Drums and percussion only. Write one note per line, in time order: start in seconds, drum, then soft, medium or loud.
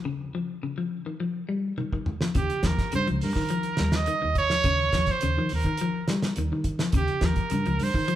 1.78 high tom soft
1.93 kick medium
2.06 mid tom medium
2.21 snare medium
2.35 kick medium
2.35 closed hi-hat medium
2.50 closed hi-hat soft
2.63 kick medium
2.63 snare medium
2.63 closed hi-hat soft
2.79 kick medium
2.79 snare soft
2.79 closed hi-hat soft
2.92 closed hi-hat medium
3.07 closed hi-hat soft
3.21 open hi-hat medium
3.35 kick medium
3.35 snare soft
3.49 closed hi-hat medium
3.63 closed hi-hat soft
3.77 snare medium
3.77 closed hi-hat soft
3.92 snare medium
3.92 closed hi-hat soft
4.06 closed hi-hat medium
4.35 kick medium
4.35 closed hi-hat soft
4.50 snare medium
4.64 kick loud
4.64 closed hi-hat medium
4.93 kick medium
4.93 snare medium
4.93 closed hi-hat soft
5.06 kick medium
5.06 snare soft
5.06 closed hi-hat soft
5.21 closed hi-hat medium
5.49 open hi-hat medium
5.64 kick medium
5.64 closed hi-hat soft
5.77 closed hi-hat medium
6.08 snare medium
6.08 closed hi-hat medium
6.22 snare medium
6.22 closed hi-hat soft
6.36 closed hi-hat medium
6.64 kick medium
6.64 closed hi-hat medium
6.79 snare medium
6.79 closed hi-hat soft
6.92 kick medium
6.92 closed hi-hat medium
7.08 closed hi-hat soft
7.21 kick medium
7.21 snare medium
7.21 closed hi-hat soft
7.36 kick medium
7.36 closed hi-hat soft
7.50 closed hi-hat medium
7.66 closed hi-hat soft
7.79 open hi-hat medium
7.94 kick medium
8.08 closed hi-hat medium